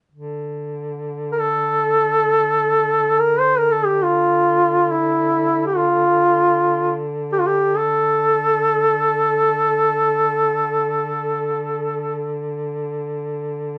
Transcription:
0.12 D3
1.32 A#4
1.39 A4
3.19 A#4
3.40 C5
3.58 A#4
3.71 A4
3.85 G4
4.03 F4
4.91 E4
5.66 G4
5.76 F4
7.32 G4
7.39 F4
7.47 G4
7.77 A4

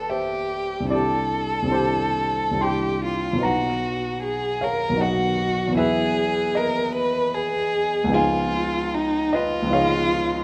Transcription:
Already playing: G1 B3 D4 F#4 A4 B4 D5 G5
0.09 G4 C5 E5
0.80 C2 C4
0.85 D4 E4
0.91 G4 A4 D5
1.62 C2 C4
1.67 D4 E4
1.72 G4 C5
2.51 C2 C4
2.56 D4 E4
2.60 G4 G5 C6
3.05 F4
3.33 B1 F#3
3.37 B3 D#4
3.42 F#4 B4 F#5 A#5
4.23 G#4
4.61 A#4 C#5 F5
4.89 B1 F#3
4.95 B3 D#4
4.99 F#4 B4 D#5 F#5
5.67 E2 F#3
5.72 B3 E4
5.77 G#4 B4 E5
6.55 A#4 B4 D#5
6.96 B4
7.35 G#4
8.04 C#2 F3
8.08 B3 D#4
8.13 F4 G#4 F5 G#5
8.95 D#4
9.33 F4 B4 D#5
9.62 C#2 F3
9.67 B3 D#4
9.72 G#4 C#5 F5

